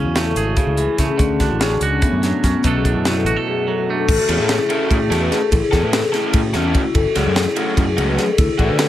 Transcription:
Already playing: C#3 C#4
0.04 E2 F#4
0.14 A3 E4, snare, closed hi-hat
0.24 A4
0.35 G#1 E4 G#4, closed hi-hat
0.46 F#4
0.56 C#3 G#4, kick, closed hi-hat
0.66 C#2 E4
0.77 E3 G#4, closed hi-hat
0.87 E4
0.98 C#3 A3 C#4, kick, snare, closed hi-hat
1.08 G#4
1.18 D2 D3 C#4, kick, closed hi-hat
1.29 G#4
1.39 D4 F#4, kick, snare, closed hi-hat
1.48 A1 E4
1.59 C#4 G#4, snare, closed hi-hat
1.70 F#4
1.81 C#2 D4 F#4, closed hi-hat
1.90 C#4
2.01 A2 B3, kick, closed hi-hat
2.12 F#2 C#4
2.23 F#3 D4, snare, closed hi-hat
2.33 B3
2.43 F#2 C#4, kick, snare, closed hi-hat
2.53 B3
2.64 B1 B2 F#3 A3 C#4 D4 A4, kick, closed hi-hat
2.75 G#4
2.85 D4 E4, kick, closed hi-hat
2.94 F#2 F#4
3.05 A3 E4, snare, closed hi-hat
3.17 A4
3.24 A1 E4 F#4, closed hi-hat
3.36 F#4 A4
3.47 F#2 G#4
3.68 F#3
3.78 F#4
3.88 A3 D4
3.98 A4
4.09 A1 A4, kick, crash
4.18 F#4
4.29 E2 A3 C#4 E4 A4, ride
4.38 A2 A4
4.49 G#4, snare, ride
4.59 E4
4.70 A3 C#4 E4 A4, ride
4.79 F#4
4.89 A2 E4, kick, ride
5.00 G#4
5.10 E2 A3 C#4 E4 F#4 A4, snare, ride
5.21 B4
5.31 G#4, snare, ride
5.41 A4
5.51 A1 E4, kick, ride
5.62 G#4
5.71 E2 A3 C#4 E4 A4, kick, snare, ride
5.82 A2 B4
5.92 A4, snare, ride
6.02 G#4
6.12 A3 C#4 E4 A4, snare, ride
6.23 C#4
6.33 A2 E4, kick, ride
6.54 E2 A3 C#4 E4 A4, snare, ride
6.65 E4
6.74 F#4, kick, ride
6.85 E4
6.95 F#1 A4, kick, ride
7.05 F#4
7.15 C#2 F#3 A3 C#4 F#4 G#4, snare, ride
7.26 F#2 A4
7.35 G#4, snare, ride
7.46 E4
7.56 F#3 A3 C#4 F#4, ride
7.67 F#4
7.77 F#2 E4, kick, ride
7.87 G#4
7.97 C#2 F#3 A3 C#4 F#4, ride
8.08 B4
8.18 G#4, snare, ride
8.29 A4
8.38 D2 E4, kick, ride
8.49 G#4
8.59 A1 D3 A3 D4 F#4 A4, kick, ride
8.69 D3 B4
8.79 A4, snare, ride

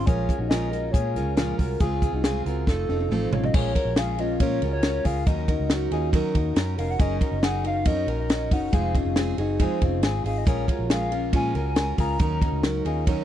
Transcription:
0.06 A#1 A#2 F3 G#3 C#4 F4 G#4 A#4 C#5, kick, closed hi-hat
0.29 G#3 C#4 F4 A#4, kick, closed hi-hat
0.39 A#1 D#4 F#4
0.49 A#2 F3 G#3 C#4 F4 G#4 A#4 D#5, snare, closed hi-hat
0.72 G#3 C#4 F4 F#4 A#4, closed hi-hat
0.91 A#2 G#3 C#4 F4 G#4 C#5, kick, closed hi-hat
0.96 A#4
1.15 C#2 G#3 C#4 F4 A#4, closed hi-hat
1.37 A#2 F3 G#3 C#4 F4 G#4 A#4, snare, closed hi-hat
1.58 C2 G#3 C#4 F4 F#4 A#4, kick, open hi-hat
1.80 C#2 C#3 G#3 C4 F4 G#4, kick, closed hi-hat
2.02 C4 F4 G#4, kick, closed hi-hat
2.13 C2 D#4 F#4
2.24 C#3 G#3 C4 F4 G#4, snare, closed hi-hat
2.46 C#2 C4 F4 F#4 G#4 A#4, closed hi-hat
2.67 F1 A3 C4 D#4 F4 A4, kick, snare
2.88 F1 C4 D#4 A4, high tom
3.00 high tom
3.10 A1 F3 A3 C4 D#4 F4 A4, mid tom
3.31 A1 C4 C#4 D#4 F4 A4 C#5, floor tom
3.44 D#5, floor tom
3.54 A#1 A#2 F3 G#3 C#4 F4 G#4 A#4 C#5, kick, crash
3.75 G#3 C#4 F4 F#4 A#4, kick, ride
3.85 A#1
3.96 G#3 C#4 F4 G#4 F5, snare, ride
4.00 F4 A#4
4.18 G#3 C#4 F4 A#4 D#5, ride
4.40 A#2 F3 G#3 C#4 F4 A#4 C#5, kick, ride
4.61 C#2 G#3 C#4 F4 F#4 A#4, ride
4.73 C#5
4.83 G#3 C#4 F4 A#4, snare, ride
5.04 C#2 G#3 C#4 F4 G#4 A#4 F5, kick, open hi-hat, ride
5.26 D#2 D#3 F#3 C#4 D#4 F#4 A#4 D#5, kick, hi-hat pedal, ride
5.48 C#4 D#4 F#4 A#4, kick, ride
5.59 C#2
5.70 F#3 C#4 D#4 F#4 A#4, snare, ride
5.91 D#2 C#4 D#4 F4 G#4 A#4, ride
6.13 D#3 F#3 C#4 D#4 F#4 A#4, kick, ride
6.35 D#2 C#4 D#4 F#4 A#4, kick, ride
6.55 F#2 F#3 C#4 D#4 F#4 A#4, snare, ride
6.78 F1 C#4 D#4 F#4 A#4 F5, open hi-hat, ride
6.91 F#5
6.99 F#1 F#3 C#4 D#4 G#4 A#4 D#5, kick, hi-hat pedal, ride
7.20 C#4 D#4 F#4 A#4, kick, ride
7.31 F#1
7.42 F#3 C#4 D#4 G#4 A#4 F#5, snare, ride
7.64 C#4 D#4 F#4 A#4 F5, ride
7.85 F#2 F#3 C#4 D#4 A#4 D#5, kick, ride
8.07 A#1 C#4 D#4 F#4 A#4, ride
8.20 D#5
8.29 F#3 C#4 D#4 A#4, snare, ride
8.51 F#1 C#4 D#4 F#4 A#4 F#5, kick, open hi-hat, ride
8.72 F1 F3 G#3 C4 D#4 F4 G#4 F5, kick, hi-hat pedal, ride
8.95 C4 C#4 D#4 F4 G#4, kick, ride
9.05 F1
9.16 G#3 C4 D#4 G#4, snare, ride
9.38 F#1 C4 D#4 F#4 G#4, ride
9.59 F3 G#3 C4 D#4 F4 G#4 C5, kick, ride
9.81 F1 C4 C#4 D#4 F4 G#4, kick, ride
10.02 G#1 G#3 C4 D#4 F4 G#4, snare, ride
10.24 G#1 C4 D#4 F4 G#4 F5, open hi-hat, ride
10.38 D#5
10.45 A#1 A#2 F3 G#3 C#4 F4 G#4 A#4 C#5, kick, hi-hat pedal, ride
10.68 G#3 C#4 F4 F#4 A#4, kick, ride
10.79 A#1
10.90 G#3 C#4 F4 G#4 A#4 F5, snare, ride
11.12 G#3 C#4 F4 A#4, ride
11.33 A#2 F3 G#3 C#4 F4 A#4 G#5, kick, ride
11.55 C#2 G#3 C#4 F4 F#4 A#4 G#5, ride
11.75 G#3 C#4 F4 A#4, snare, ride
11.98 C#2 G#3 C#4 F4 G#4 A#4 A#5, kick, open hi-hat, ride
12.19 D#2 D#3 F#3 C#4 D#4 F#4 A#4 A#5, kick, hi-hat pedal, ride
12.41 C#4 D#4 F#4 A#4, kick, ride
12.52 C#2
12.63 F#3 C#4 D#4 A#4, snare, ride
12.85 D#2 C#4 D#4 F4 G#4 A#4, ride
13.06 D#3 F#3 C#4 D#4 F#4 A#4 C#5, kick, ride

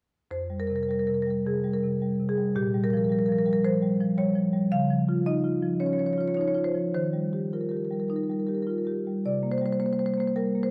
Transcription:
0.31 F2 C5
0.50 G3
0.60 A#4
0.67 C3 A#4
0.76 A#4
0.83 A#4
0.89 G3 A#4
0.99 A#4
1.07 C3 A#4
1.14 A#4
1.22 A#4
1.27 G3 A#4
1.46 C3 G#4
1.64 G3
1.74 A#4
1.84 C3
2.02 G3
2.20 C3
2.29 G#4
2.38 G3
2.55 A#2 G4
2.74 G3
2.84 A#4
2.90 F3 A#4
2.97 A#4
3.05 A#4
3.09 G3 A#4
3.19 A#4
3.26 F3 A#4
3.32 A#4
3.39 A#4
3.46 G3 A#4
3.53 A#4
3.64 F3 C5
3.83 G3
4.01 F3
4.18 G3 C#5
4.35 F3
4.53 G3
4.72 C#3 F5
4.90 F3
5.09 F4
5.26 D#4 D#5
5.44 F4
5.62 F3
5.80 C#4 C#5
5.86 C#5
5.93 C#5
5.98 F3 C#5
6.06 C#5
6.13 C#5
6.18 F4 C#5
6.28 C#5
6.34 D#4 C#5
6.41 C#5
6.48 C#5
6.55 F4 C#5
6.64 C5
6.75 F3
6.94 D#3 C5
7.13 G3
7.33 G4
7.53 F4 A#4
7.61 A#4
7.69 G4 A#4
7.77 A#4
7.85 A#4
7.91 G3 A#4
8.00 A#4
8.08 D#4 A#4
8.16 A#4
8.23 A#4
8.29 G3 A#4
8.39 A#4
8.47 G4 A#4
8.55 A#4
8.62 A#4
8.67 F4 A#4
8.78 A#4
8.85 G4 A#4
9.07 G3
9.26 C3 D5
9.43 A#3
9.52 C5
9.58 G3 C5
9.66 C5
9.73 C5
9.80 A#3 C5
9.86 C5
9.93 C5
9.98 G3 C5
10.06 C5
10.14 C5
10.18 A#3 C5
10.28 C5
10.36 G3 A#4
10.55 A#3
10.63 C5

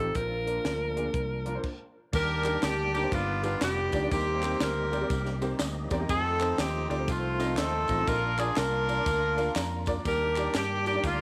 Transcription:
Already playing: A1 F3 A3 C4 D#4 A4
0.15 A#1 A#2 F3 A#3 C4 D4 F4 A#4, kick, closed hi-hat
0.21 D4
0.47 A#3 D4 F4 A#4, closed hi-hat
0.65 D2, snare, closed hi-hat
0.96 A#3 D4 F4 G#4, closed hi-hat
1.14 C2, kick, closed hi-hat
1.46 A#3 D4 F4 A#4, closed hi-hat
1.55 A#3 D4 F4 C5
1.63 kick, crash
2.13 D#2 D#3 G3 A#3 D4 F4 G4 A#4, kick, crash, tambourine
2.19 G4
2.44 A#3 D4 D#4 G4 A#4, clap, ride, tambourine
2.63 D2 G4, snare, clap, ride, tambourine
2.94 A#3 D4 D#4 G4 A#4, ride, tambourine
3.03 A#3 D4 D#4 G4 C5
3.12 G1 G2 D#3 G3 B3 D4 E4 F4, kick, ride, tambourine
3.19 F4
3.43 D4 D#4 F4 G4 B4, ride, tambourine
3.61 F1 B3 D4 G4, snare, clap, ride, tambourine
3.92 D2 D4 D#4 F4 G4 D5, kick, ride, tambourine
4.03 D4 D#4 F4 G4 D5
4.11 D#2 D#3 G3 A#3 C4 D#4 G4, kick, ride, tambourine
4.43 C4 D#4 G4 A#4 C5, clap, ride, tambourine
4.60 D2 G4 A#4, snare, clap, ride, tambourine
4.92 C4 D#4 G4 A#4 D5, ride, tambourine
5.01 C4 D#4 G4 A#4 D5
5.10 C2, kick, ride, tambourine
5.26 snare
5.41 C4 D#4 G4 A#4 C5, ride, tambourine
5.59 D2 D#5, snare, clap, ride, tambourine
5.90 E2 C4 D#4 G4 A#4 D5 G5, kick, ride, tambourine
6.00 C4 D#4 G4 A#4 D#5
6.09 F2 D#3 F3 G3 C4 D#4 F4 A4, kick, ride, tambourine
6.15 A3
6.40 C4 D#4 F4 A4 C5, clap, ride, tambourine
6.58 D#2 G4, snare, clap, ride, tambourine
6.90 D2 C4 D#4 F4 G4 A4 D5, ride, tambourine
6.98 C4 D#4 F4 A4 C5
7.08 C2 A3 C4 F4, kick, ride, tambourine
7.39 C4 D#4 F4 A4 D#5, snare, ride, tambourine
7.57 D#2 C4 D#4 A4, snare, clap, ride, tambourine
7.88 A1 C4 D#4 F4 A4 D#5, kick, ride, tambourine
7.98 C4 D#4 F4 A4 D#5
8.06 A#1 A#2 A#3 D4 F4 A#4, kick, ride, tambourine
8.38 A#3 D4 F4 G#4 A#4 D5, clap, ride, tambourine
8.56 C2 D4 F4 A#4, snare, clap, ride, tambourine
8.88 A#3 D4 F4 A#4 D5, ride, tambourine
8.97 A#3 D4 F4 A#4 D5
9.06 D2, kick, ride, tambourine
9.37 A#3 D4 F4 A#4 F5, ride, tambourine
9.56 F2 A#5, snare, clap, ride, tambourine
9.86 A#3 D4 F4 A#4 D5, kick, ride, tambourine
9.97 A#3 D4 A#4 D5
10.05 D#2 D#3 G3 A#3 D4 G4 A#4, kick, ride, tambourine
10.36 D4 D#4 G4 A#4 D5, clap, ride, tambourine
10.54 G2 G4, snare, clap, ride, tambourine
10.86 D4 D#4 G4 A#4 D5, ride, tambourine
10.95 D4 D#4 G4 A#4 D5
11.04 D2 A#3 D4 F4, kick, ride, tambourine

